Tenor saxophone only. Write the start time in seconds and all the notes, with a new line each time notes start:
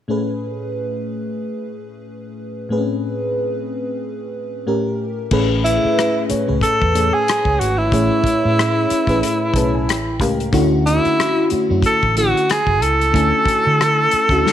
5.64 E4
6.62 A4
7.14 G#4
7.59 F#4
7.78 E4
10.86 E4
11.86 A4
12.18 F#4
12.51 G#4
12.83 A4